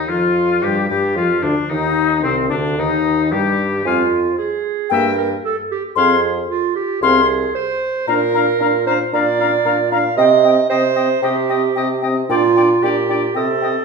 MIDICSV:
0, 0, Header, 1, 6, 480
1, 0, Start_track
1, 0, Tempo, 537153
1, 1522, Time_signature, 4, 2, 24, 8
1, 2968, Tempo, 527241
1, 10168, Tempo, 534759
1, 12519, End_track
2, 0, Start_track
2, 0, Title_t, "Flute"
2, 0, Program_c, 0, 73
2, 85, Note_on_c, 0, 65, 54
2, 552, Note_on_c, 0, 67, 63
2, 565, Note_off_c, 0, 65, 0
2, 791, Note_off_c, 0, 67, 0
2, 796, Note_on_c, 0, 67, 59
2, 1031, Note_on_c, 0, 65, 53
2, 1045, Note_off_c, 0, 67, 0
2, 1258, Note_off_c, 0, 65, 0
2, 1263, Note_on_c, 0, 62, 60
2, 1508, Note_off_c, 0, 62, 0
2, 1512, Note_on_c, 0, 63, 63
2, 1985, Note_off_c, 0, 63, 0
2, 1990, Note_on_c, 0, 60, 59
2, 2220, Note_off_c, 0, 60, 0
2, 2226, Note_on_c, 0, 62, 58
2, 2282, Note_off_c, 0, 62, 0
2, 2478, Note_on_c, 0, 63, 71
2, 2960, Note_on_c, 0, 67, 69
2, 2974, Note_off_c, 0, 63, 0
2, 3440, Note_off_c, 0, 67, 0
2, 3445, Note_on_c, 0, 80, 59
2, 3672, Note_off_c, 0, 80, 0
2, 4401, Note_on_c, 0, 79, 66
2, 4631, Note_off_c, 0, 79, 0
2, 5367, Note_on_c, 0, 84, 67
2, 5594, Note_off_c, 0, 84, 0
2, 6340, Note_on_c, 0, 84, 75
2, 6563, Note_off_c, 0, 84, 0
2, 7296, Note_on_c, 0, 82, 71
2, 7351, Note_off_c, 0, 82, 0
2, 7542, Note_on_c, 0, 82, 62
2, 7596, Note_off_c, 0, 82, 0
2, 7782, Note_on_c, 0, 82, 57
2, 7837, Note_off_c, 0, 82, 0
2, 8020, Note_on_c, 0, 82, 63
2, 8074, Note_off_c, 0, 82, 0
2, 8259, Note_on_c, 0, 82, 68
2, 8313, Note_off_c, 0, 82, 0
2, 8508, Note_on_c, 0, 82, 62
2, 8563, Note_off_c, 0, 82, 0
2, 8733, Note_on_c, 0, 82, 70
2, 8788, Note_off_c, 0, 82, 0
2, 8973, Note_on_c, 0, 82, 66
2, 9028, Note_off_c, 0, 82, 0
2, 9219, Note_on_c, 0, 79, 72
2, 9273, Note_off_c, 0, 79, 0
2, 9455, Note_on_c, 0, 79, 64
2, 9509, Note_off_c, 0, 79, 0
2, 9684, Note_on_c, 0, 79, 62
2, 9738, Note_off_c, 0, 79, 0
2, 9922, Note_on_c, 0, 79, 65
2, 9977, Note_off_c, 0, 79, 0
2, 10161, Note_on_c, 0, 79, 72
2, 10216, Note_off_c, 0, 79, 0
2, 10403, Note_on_c, 0, 79, 64
2, 10457, Note_off_c, 0, 79, 0
2, 10640, Note_on_c, 0, 79, 69
2, 10695, Note_off_c, 0, 79, 0
2, 10874, Note_on_c, 0, 79, 63
2, 10930, Note_off_c, 0, 79, 0
2, 11125, Note_on_c, 0, 79, 72
2, 11179, Note_off_c, 0, 79, 0
2, 11364, Note_on_c, 0, 79, 61
2, 11418, Note_off_c, 0, 79, 0
2, 11604, Note_on_c, 0, 79, 64
2, 11658, Note_off_c, 0, 79, 0
2, 11835, Note_on_c, 0, 79, 57
2, 11890, Note_off_c, 0, 79, 0
2, 12066, Note_on_c, 0, 79, 62
2, 12123, Note_off_c, 0, 79, 0
2, 12309, Note_on_c, 0, 79, 59
2, 12366, Note_off_c, 0, 79, 0
2, 12519, End_track
3, 0, Start_track
3, 0, Title_t, "Oboe"
3, 0, Program_c, 1, 68
3, 0, Note_on_c, 1, 63, 57
3, 81, Note_on_c, 1, 65, 57
3, 94, Note_off_c, 1, 63, 0
3, 565, Note_on_c, 1, 67, 62
3, 579, Note_off_c, 1, 65, 0
3, 794, Note_off_c, 1, 67, 0
3, 800, Note_on_c, 1, 67, 57
3, 1035, Note_off_c, 1, 67, 0
3, 1046, Note_on_c, 1, 65, 54
3, 1278, Note_on_c, 1, 62, 54
3, 1291, Note_off_c, 1, 65, 0
3, 1518, Note_on_c, 1, 63, 65
3, 1531, Note_off_c, 1, 62, 0
3, 1994, Note_off_c, 1, 63, 0
3, 2000, Note_on_c, 1, 60, 59
3, 2109, Note_off_c, 1, 60, 0
3, 2238, Note_on_c, 1, 62, 59
3, 2498, Note_on_c, 1, 63, 66
3, 2511, Note_off_c, 1, 62, 0
3, 2970, Note_on_c, 1, 67, 65
3, 2984, Note_off_c, 1, 63, 0
3, 3452, Note_off_c, 1, 67, 0
3, 3469, Note_on_c, 1, 77, 61
3, 3631, Note_off_c, 1, 77, 0
3, 4434, Note_on_c, 1, 76, 62
3, 4595, Note_off_c, 1, 76, 0
3, 5385, Note_on_c, 1, 77, 67
3, 5549, Note_off_c, 1, 77, 0
3, 6345, Note_on_c, 1, 77, 66
3, 6510, Note_off_c, 1, 77, 0
3, 7311, Note_on_c, 1, 77, 68
3, 7416, Note_off_c, 1, 77, 0
3, 7551, Note_on_c, 1, 77, 61
3, 7655, Note_off_c, 1, 77, 0
3, 7786, Note_on_c, 1, 77, 62
3, 7892, Note_off_c, 1, 77, 0
3, 8024, Note_on_c, 1, 77, 62
3, 8130, Note_off_c, 1, 77, 0
3, 8271, Note_on_c, 1, 77, 68
3, 8376, Note_off_c, 1, 77, 0
3, 8502, Note_on_c, 1, 77, 62
3, 8607, Note_off_c, 1, 77, 0
3, 8737, Note_on_c, 1, 77, 67
3, 8843, Note_off_c, 1, 77, 0
3, 8985, Note_on_c, 1, 77, 55
3, 9089, Note_off_c, 1, 77, 0
3, 9212, Note_on_c, 1, 75, 69
3, 9319, Note_off_c, 1, 75, 0
3, 9447, Note_on_c, 1, 75, 58
3, 9555, Note_off_c, 1, 75, 0
3, 9690, Note_on_c, 1, 75, 67
3, 9798, Note_off_c, 1, 75, 0
3, 9923, Note_on_c, 1, 75, 62
3, 10032, Note_off_c, 1, 75, 0
3, 10176, Note_on_c, 1, 75, 69
3, 10281, Note_off_c, 1, 75, 0
3, 10411, Note_on_c, 1, 75, 64
3, 10517, Note_off_c, 1, 75, 0
3, 10653, Note_on_c, 1, 75, 67
3, 10759, Note_off_c, 1, 75, 0
3, 10890, Note_on_c, 1, 75, 57
3, 10997, Note_off_c, 1, 75, 0
3, 11137, Note_on_c, 1, 74, 68
3, 11243, Note_off_c, 1, 74, 0
3, 11376, Note_on_c, 1, 74, 60
3, 11482, Note_off_c, 1, 74, 0
3, 11621, Note_on_c, 1, 74, 66
3, 11725, Note_off_c, 1, 74, 0
3, 11850, Note_on_c, 1, 74, 58
3, 11956, Note_off_c, 1, 74, 0
3, 12082, Note_on_c, 1, 75, 60
3, 12191, Note_off_c, 1, 75, 0
3, 12327, Note_on_c, 1, 75, 60
3, 12437, Note_off_c, 1, 75, 0
3, 12519, End_track
4, 0, Start_track
4, 0, Title_t, "Clarinet"
4, 0, Program_c, 2, 71
4, 0, Note_on_c, 2, 63, 66
4, 81, Note_on_c, 2, 65, 63
4, 94, Note_off_c, 2, 63, 0
4, 556, Note_off_c, 2, 65, 0
4, 562, Note_on_c, 2, 67, 61
4, 670, Note_off_c, 2, 67, 0
4, 800, Note_on_c, 2, 67, 62
4, 1035, Note_on_c, 2, 65, 56
4, 1049, Note_off_c, 2, 67, 0
4, 1266, Note_off_c, 2, 65, 0
4, 1272, Note_on_c, 2, 62, 62
4, 1382, Note_off_c, 2, 62, 0
4, 1517, Note_on_c, 2, 63, 75
4, 2001, Note_on_c, 2, 60, 68
4, 2014, Note_off_c, 2, 63, 0
4, 2235, Note_on_c, 2, 62, 61
4, 2248, Note_off_c, 2, 60, 0
4, 2474, Note_off_c, 2, 62, 0
4, 2480, Note_on_c, 2, 63, 71
4, 2955, Note_off_c, 2, 63, 0
4, 2966, Note_on_c, 2, 67, 75
4, 3439, Note_off_c, 2, 67, 0
4, 3452, Note_on_c, 2, 65, 79
4, 3926, Note_off_c, 2, 65, 0
4, 3933, Note_on_c, 2, 68, 81
4, 4420, Note_on_c, 2, 70, 87
4, 4434, Note_off_c, 2, 68, 0
4, 4658, Note_off_c, 2, 70, 0
4, 4663, Note_on_c, 2, 70, 80
4, 4769, Note_off_c, 2, 70, 0
4, 4905, Note_on_c, 2, 69, 86
4, 5011, Note_off_c, 2, 69, 0
4, 5149, Note_on_c, 2, 67, 76
4, 5254, Note_off_c, 2, 67, 0
4, 5388, Note_on_c, 2, 68, 94
4, 5687, Note_off_c, 2, 68, 0
4, 5864, Note_on_c, 2, 65, 89
4, 6083, Note_off_c, 2, 65, 0
4, 6094, Note_on_c, 2, 67, 81
4, 6328, Note_off_c, 2, 67, 0
4, 6333, Note_on_c, 2, 68, 93
4, 6808, Note_off_c, 2, 68, 0
4, 6817, Note_on_c, 2, 72, 96
4, 7289, Note_off_c, 2, 72, 0
4, 7297, Note_on_c, 2, 70, 108
4, 8000, Note_off_c, 2, 70, 0
4, 8020, Note_on_c, 2, 72, 93
4, 8127, Note_off_c, 2, 72, 0
4, 8263, Note_on_c, 2, 74, 106
4, 8958, Note_off_c, 2, 74, 0
4, 8969, Note_on_c, 2, 77, 100
4, 9200, Note_off_c, 2, 77, 0
4, 9206, Note_on_c, 2, 75, 118
4, 9678, Note_off_c, 2, 75, 0
4, 9684, Note_on_c, 2, 72, 112
4, 10157, Note_off_c, 2, 72, 0
4, 10168, Note_on_c, 2, 67, 92
4, 10870, Note_off_c, 2, 67, 0
4, 11124, Note_on_c, 2, 65, 115
4, 11605, Note_on_c, 2, 67, 94
4, 11618, Note_off_c, 2, 65, 0
4, 12076, Note_off_c, 2, 67, 0
4, 12081, Note_on_c, 2, 69, 96
4, 12519, Note_off_c, 2, 69, 0
4, 12519, End_track
5, 0, Start_track
5, 0, Title_t, "French horn"
5, 0, Program_c, 3, 60
5, 79, Note_on_c, 3, 53, 63
5, 564, Note_on_c, 3, 55, 53
5, 578, Note_off_c, 3, 53, 0
5, 804, Note_off_c, 3, 55, 0
5, 808, Note_on_c, 3, 55, 49
5, 915, Note_off_c, 3, 55, 0
5, 1039, Note_on_c, 3, 53, 47
5, 1147, Note_off_c, 3, 53, 0
5, 1282, Note_on_c, 3, 50, 57
5, 1390, Note_off_c, 3, 50, 0
5, 1516, Note_on_c, 3, 51, 59
5, 2001, Note_on_c, 3, 48, 59
5, 2014, Note_off_c, 3, 51, 0
5, 2244, Note_on_c, 3, 50, 55
5, 2257, Note_off_c, 3, 48, 0
5, 2491, Note_on_c, 3, 51, 62
5, 2504, Note_off_c, 3, 50, 0
5, 2973, Note_on_c, 3, 55, 69
5, 2986, Note_off_c, 3, 51, 0
5, 3448, Note_off_c, 3, 55, 0
5, 3453, Note_on_c, 3, 60, 51
5, 3620, Note_off_c, 3, 60, 0
5, 4424, Note_on_c, 3, 58, 59
5, 4589, Note_off_c, 3, 58, 0
5, 5386, Note_on_c, 3, 60, 58
5, 5550, Note_off_c, 3, 60, 0
5, 6345, Note_on_c, 3, 60, 70
5, 6510, Note_off_c, 3, 60, 0
5, 7304, Note_on_c, 3, 62, 64
5, 7410, Note_off_c, 3, 62, 0
5, 7536, Note_on_c, 3, 62, 62
5, 7644, Note_off_c, 3, 62, 0
5, 7776, Note_on_c, 3, 62, 70
5, 7884, Note_off_c, 3, 62, 0
5, 8011, Note_on_c, 3, 62, 60
5, 8120, Note_off_c, 3, 62, 0
5, 8254, Note_on_c, 3, 62, 65
5, 8362, Note_off_c, 3, 62, 0
5, 8495, Note_on_c, 3, 62, 60
5, 8602, Note_off_c, 3, 62, 0
5, 8737, Note_on_c, 3, 62, 62
5, 8843, Note_off_c, 3, 62, 0
5, 8969, Note_on_c, 3, 62, 58
5, 9076, Note_off_c, 3, 62, 0
5, 9215, Note_on_c, 3, 60, 65
5, 9321, Note_off_c, 3, 60, 0
5, 9458, Note_on_c, 3, 60, 60
5, 9564, Note_off_c, 3, 60, 0
5, 9695, Note_on_c, 3, 60, 66
5, 9802, Note_off_c, 3, 60, 0
5, 9933, Note_on_c, 3, 60, 65
5, 10040, Note_off_c, 3, 60, 0
5, 10181, Note_on_c, 3, 60, 66
5, 10285, Note_off_c, 3, 60, 0
5, 10414, Note_on_c, 3, 60, 57
5, 10520, Note_off_c, 3, 60, 0
5, 10653, Note_on_c, 3, 60, 58
5, 10759, Note_off_c, 3, 60, 0
5, 10884, Note_on_c, 3, 60, 65
5, 10993, Note_off_c, 3, 60, 0
5, 11124, Note_on_c, 3, 62, 67
5, 11233, Note_off_c, 3, 62, 0
5, 11374, Note_on_c, 3, 62, 60
5, 11480, Note_off_c, 3, 62, 0
5, 11611, Note_on_c, 3, 62, 62
5, 11717, Note_off_c, 3, 62, 0
5, 11845, Note_on_c, 3, 62, 62
5, 11952, Note_off_c, 3, 62, 0
5, 12075, Note_on_c, 3, 60, 60
5, 12186, Note_off_c, 3, 60, 0
5, 12326, Note_on_c, 3, 60, 53
5, 12436, Note_off_c, 3, 60, 0
5, 12519, End_track
6, 0, Start_track
6, 0, Title_t, "Bassoon"
6, 0, Program_c, 4, 70
6, 0, Note_on_c, 4, 39, 58
6, 84, Note_on_c, 4, 41, 51
6, 97, Note_off_c, 4, 39, 0
6, 562, Note_on_c, 4, 43, 57
6, 576, Note_off_c, 4, 41, 0
6, 802, Note_off_c, 4, 43, 0
6, 807, Note_on_c, 4, 43, 61
6, 1043, Note_on_c, 4, 41, 52
6, 1056, Note_off_c, 4, 43, 0
6, 1275, Note_off_c, 4, 41, 0
6, 1280, Note_on_c, 4, 38, 51
6, 1388, Note_off_c, 4, 38, 0
6, 1517, Note_on_c, 4, 39, 66
6, 2000, Note_on_c, 4, 36, 57
6, 2013, Note_off_c, 4, 39, 0
6, 2238, Note_on_c, 4, 38, 67
6, 2251, Note_off_c, 4, 36, 0
6, 2480, Note_off_c, 4, 38, 0
6, 2486, Note_on_c, 4, 39, 61
6, 2966, Note_on_c, 4, 43, 58
6, 2979, Note_off_c, 4, 39, 0
6, 3444, Note_off_c, 4, 43, 0
6, 3449, Note_on_c, 4, 41, 63
6, 3853, Note_off_c, 4, 41, 0
6, 4416, Note_on_c, 4, 43, 63
6, 4815, Note_off_c, 4, 43, 0
6, 5372, Note_on_c, 4, 41, 78
6, 5773, Note_off_c, 4, 41, 0
6, 6331, Note_on_c, 4, 36, 71
6, 6736, Note_off_c, 4, 36, 0
6, 7297, Note_on_c, 4, 46, 83
6, 7718, Note_off_c, 4, 46, 0
6, 7769, Note_on_c, 4, 46, 67
6, 8196, Note_off_c, 4, 46, 0
6, 8257, Note_on_c, 4, 46, 78
6, 8677, Note_off_c, 4, 46, 0
6, 8731, Note_on_c, 4, 46, 70
6, 9150, Note_off_c, 4, 46, 0
6, 9201, Note_on_c, 4, 48, 89
6, 9628, Note_off_c, 4, 48, 0
6, 9689, Note_on_c, 4, 48, 66
6, 10113, Note_off_c, 4, 48, 0
6, 10164, Note_on_c, 4, 48, 80
6, 10587, Note_off_c, 4, 48, 0
6, 10644, Note_on_c, 4, 48, 70
6, 11067, Note_off_c, 4, 48, 0
6, 11124, Note_on_c, 4, 46, 91
6, 11549, Note_off_c, 4, 46, 0
6, 11603, Note_on_c, 4, 46, 71
6, 12024, Note_off_c, 4, 46, 0
6, 12077, Note_on_c, 4, 48, 72
6, 12435, Note_off_c, 4, 48, 0
6, 12519, End_track
0, 0, End_of_file